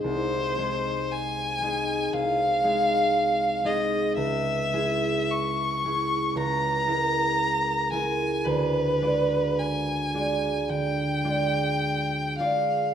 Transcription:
X:1
M:4/4
L:1/8
Q:1/4=56
K:Ab
V:1 name="Violin"
c2 a2 f3 e | _f2 d'2 b3 a | =B2 a2 g3 f |]
V:2 name="Harp"
[C,,A,EA] [A,EA]2 [A,EA] C,, [A,EA]2 [A,EA] | D,, [A,_FA]2 [A,FA] D,, [A,FB]2 [A,FB] | =D,, [A,F=d]2 [A,Fd] =D, [A,Fd]2 [A,Fd] |]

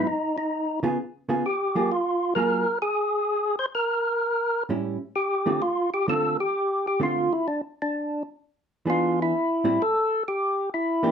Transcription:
X:1
M:4/4
L:1/8
Q:"Swing" 1/4=129
K:Ddor
V:1 name="Tonewheel organ"
^D D2 z3 G2 | ^E2 ^A2 ^G3 c | _B4 z2 G2 | F G A G2 G F E |
D D2 z3 F E- | E2 A2 G2 E2 |]
V:2 name="Hollow-body jazz guitar"
z3 [^C,B,F^G] z [C,B,^EG] z [^F,_B,EG] | z2 [^F,^A,^E^G] z4 z | z4 [A,,G,^CE] z2 [D,A,=CF] | z2 [D,A,CF] z3 [D,A,CF] z |
z6 [E,B,D^G]2 | z [A,,G,CE] z4 z [E,_B,DG] |]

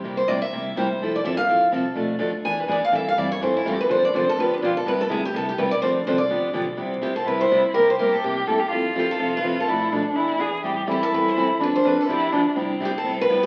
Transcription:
X:1
M:4/4
L:1/8
Q:"Swing" 1/4=249
K:C
V:1 name="Steel-string acoustic guitar"
G c d e3 c2- | c d e f3 A2- | A z3 ^g B d f | e f d _d c E G B |
c d c A B D F A | B A _A G =A G B d | c z c d3 z2 | z2 G A B c2 z |
_B c B A G2 z2 | z2 G A2 B2 A- | A3 z4 z | z2 G A B c2 z |
B c B A G2 z2 | z2 G A2 B2 G |]
V:2 name="Violin"
z8 | z8 | z8 | z8 |
z8 | z8 | z8 | C4 E4 |
G6 A G | F8 | E2 D2 E2 ^G2 | G2 E6 |
D4 E2 D2 | C6 B,2 |]
V:3 name="Steel-string acoustic guitar"
[C,G,_B,EG] z [C,G,B,EG] z [C,G,B,EG] z [C,G,B,EG] z | [F,CEA] z [F,CEA] z [F,CEA] z [F,CEA] z | [B,,F,A,DA] z [B,,F,A,DA] z [E,B,D^G] z [E,B,DG] z | [E,G,CEA] z [E,G,CEA] z [E,G,CEA] z [E,G,CEA] z |
[D,F,CDA] z [D,F,CDA] z [D,F,B,DG] z [D,F,B,DG] z | [C,G,B,EG] z [C,G,B,EG] z [C,G,B,EG] z [C,G,B,EG] z | [D,F,CDA] z [D,F,CDA] z [D,F,B,DG] z [D,F,B,DG] z | [C,G,B,EG] z [C,G,B,EG] z [C,G,B,EG] z [C,G,B,EG] z |
[C,G,_B,EG] z [C,G,B,EG] z [C,G,B,EG] z [C,G,B,EG] z | [F,CEA] z [F,CEA] z [F,CEA] z [F,CEA] z | [B,,F,A,DA] z [B,,F,A,DA] z [E,B,D^G] z [E,B,DG] z | [E,G,CEA] z [E,G,CEA] z [E,G,CEA] z [E,G,CEA] z |
[D,F,CDA] z [D,F,CDA] z [D,F,B,DG] z [D,F,B,DG] z | [C,G,B,EG] z [C,G,B,EG] z [C,G,B,EG] z [C,G,B,EG] z |]
V:4 name="Upright bass" clef=bass
C,,2 D,,2 E,, z C,,2 | F,,,2 G,,,2 A,,,2 C,,2 | B,,,2 D,,2 E,,2 ^G,, z | A,, z G,,2 F,,2 E,,2 |
D,,2 C,, z G,,,2 B,,,2 | C,,2 D,,2 C,,2 B,,,2 | D,,2 C,,2 G,,,2 B,,,2 | C,,4 G,,,4 |
C,,4 G,,,4 | F,,4 C,,4 | B,,,4 E,,4 | A,,,4 E,,4 |
D,,4 G,,,4 | C,,4 G,,,4 |]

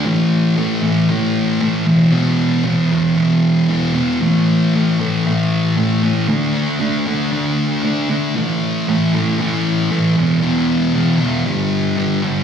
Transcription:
X:1
M:4/4
L:1/8
Q:1/4=116
K:Em
V:1 name="Distorted electric guitar" clef=bass
[A,,E,A,]2 [A,,E,A,] [A,,E,A,] [A,,E,A,]2 [A,,E,A,] [E,,B,,E,] | [E,,B,,E,]2 [E,,B,,E,] [E,,B,,E,] [E,,B,,E,]2 [E,,B,,E,] [E,,B,,E,] | [A,,E,A,]2 [A,,E,A,] [A,,E,A,] [A,,E,A,]2 [A,,E,A,] [A,,E,A,] | [D,A,D]2 [D,A,D] [D,A,D] [D,A,D]2 [D,A,D] [D,A,D] |
[A,,E,A,]2 [A,,E,A,] [A,,E,A,] [A,,E,A,]2 [A,,E,A,] [E,,B,,E,] | [E,,B,,E,]2 [E,,B,,E,] [E,,B,,E,] [G,,D,G,]2 [G,,D,G,] [G,,D,G,] |]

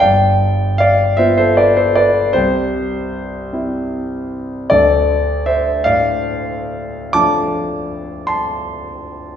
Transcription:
X:1
M:12/8
L:1/16
Q:3/8=51
K:Dm
V:1 name="Grand piano"
[dg]4 [df]2 [ce] [Ac] [=Bd] [Ac] [Bd]2 [Gc]6 z6 | [Ad]4 [ce]2 [df]6 [ad']6 [ac']6 |]
V:2 name="Grand piano"
G,,,6 [=B,F]6 C,,6 [CE]6 | D,,6 A,,6 [F,A,D]12 |]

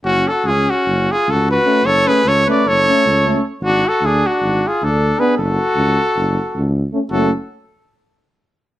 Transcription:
X:1
M:9/8
L:1/8
Q:3/8=103
K:F#m
V:1 name="Trumpet"
F A G F2 G A B2 | c B c d c4 z | F A G F2 G A2 B | A6- A z2 |
A z8 |]
V:2 name="Trumpet"
C F C C2 ^E F F2 | A G A B A4 z | D F D D2 ^E D2 G | F6- F z2 |
F z8 |]
V:3 name="Euphonium"
z8 C- | C C2 C2 C2 C2 | z8 D- | D z6 z C |
C z8 |]
V:4 name="Trombone"
z8 A,- | A, A,2 A,2 A,2 A,2 | z8 B,- | B, z6 z A, |
A, z8 |]
V:5 name="Tuba" clef=bass
F,,,2 C,,2 F,,,2 C,,3 | F,,,2 C,,2 F,,,2 C,,3 | G,,,2 D,,2 G,,,2 D,,3 | F,,,2 C,,2 F,,,2 C,,3 |
F,,, z8 |]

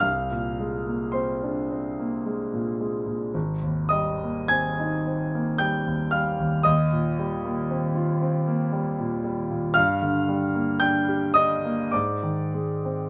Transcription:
X:1
M:3/4
L:1/16
Q:1/4=55
K:Ablyd
V:1 name="Grand piano"
[ff']4 [cc']6 z2 | z2 [ee']2 [aa']4 [gg']2 [ff']2 | [ee']8- [ee']2 z2 | [ff']4 [gg']2 [ee']2 [dd']4 |]
V:2 name="Grand piano" clef=bass
C,, B,, A, B, C D C B, A, B,, A, B,, | A,,, E,, G, B, C E C B, G, E,, G, E,, | E,, B,, G, B, C F C B, G, B,, G, B,, | G,, D, G, B, D G D B, A,, E, A, C |]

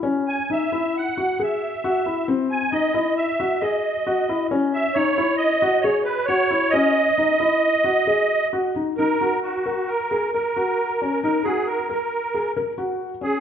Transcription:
X:1
M:5/4
L:1/8
Q:1/4=134
K:Ebphr
V:1 name="Accordion"
z a f2 g2 f4 | z a e2 f2 e4 | z =e d2 _e2 d =B d2 | e8 z2 |
B2 G2 B2 B4 | B A B B3 z3 A |]
V:2 name="Felt piano"
D2 E F2 G A2 G F | =C2 E F2 G A2 G F | D2 E =E2 ^F ^G2 F E | D2 E =E2 ^F ^G2 F _E |
E G2 B2 A B G2 D | E G2 B2 A B G2 D |]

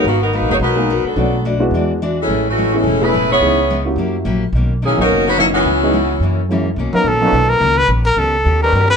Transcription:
X:1
M:4/4
L:1/8
Q:"Swing" 1/4=214
K:B
V:1 name="Trumpet"
z8 | z8 | z8 | z8 |
z8 | z8 | z A =A3 ^A2 B | z A =A3 ^A2 B |]
V:2 name="Trombone section"
z8 | z8 | z8 | z8 |
z8 | z8 | z3 [A,,CDB]3 z2 | z4 z [=G,CDB]3 |]
V:3 name="Saxophone section"
[D,A,B,F] [F,B,DA] [F,A,DB] [A,DFc] [F,DAB]3 [F,B,=D=A]- | [F,B,=D=A]2 z4 z [E,G,CA]- | [E,G,C=A] [E,=A,CF]2 [E,G,CA]2 [A,EGB]2 [B,EGc]- | [B,EGc]3 z4 z |
z2 [E,A,CG] [F,CDA]2 [F,CDB] [F,A,CE] [E,B,CF]- | [E,B,CF]6 z2 | z8 | z8 |]
V:4 name="Grand piano"
z3 [G,A,B,DF] z [G,A,B,DG] z2 | [=A,B,C=DF] z2 [G,B,DEF]3 z2 | z3 [=A,B,CEG] z [A,B,CEG] z2 | [E,B,CDG] z2 [A,CEF=G]3 z2 |
z3 [F,A,B,CD]3 [F,A,B,CD]2 | z [E,G,B,CD] z4 [F,G,A,CE] z | z [F,A,B,CD] z [F,A,B,CD] z4 | z8 |]
V:5 name="Steel-string acoustic guitar"
[G,B,FA] z [G,B,FA] z [G,B,FA] z [G,B,FA] z | [B,,=A,=DF] z [B,,A,DF] z [E,G,DF] z [E,G,DF] z | [=A,,G,CE] z [A,,G,CE] z [A,,G,CE] z [A,,G,CE] z | [C,G,B,E] z [C,G,B,E] z [F,A,E=G] z [F,A,EG] z |
[B,,D,A,C] z [B,,D,A,C] z [B,,D,A,C] z [B,,D,A,C] z | [C,G,B,E] z [C,G,B,E] z [F,,E,A,C] z [F,,E,A,C] z | [B,,D,A,C] z [B,,D,A,C] z [B,,D,A,C] z [B,,D,A,C] z | [D,B,C=G] z [D,B,CG] z [D,B,CG] z [D,B,CG] z |]
V:6 name="Upright bass" clef=bass
G,,,2- (3G,,, A,,, F,,, B,,,3 z | B,,,4 E,,4 | =A,,,4 E,,,4 | C,,4 F,,2 A,,,2 |
B,,,3 A,,, F,,,4 | C,,4 F,,4 | B,,, z A,,,2 B,,,2 C,,2 | A,,,2 C,,2 D,,2 =G,,2 |]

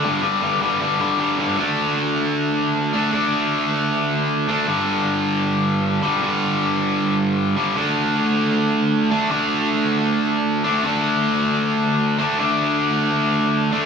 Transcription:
X:1
M:4/4
L:1/8
Q:1/4=156
K:Dmix
V:1 name="Overdriven electric guitar" clef=bass
[G,,D,G,] [G,,D,G,] [G,,D,G,] [G,,D,G,] [G,,D,G,] [G,,D,G,] [G,,D,G,] [G,,D,G,] | [D,A,D]6- [D,A,D] [D,A,D] | [D,A,D]6- [D,A,D] [D,A,D] | [G,,D,G,]6- [G,,D,G,] [G,,D,G,] |
[G,,D,G,]6- [G,,D,G,] [G,,D,G,] | [D,A,D]6- [D,A,D] [D,A,D] | [D,A,D]6- [D,A,D] [D,A,D] | [D,A,D]6- [D,A,D] [D,A,D] |
[D,A,D]6- [D,A,D] [D,A,D] |]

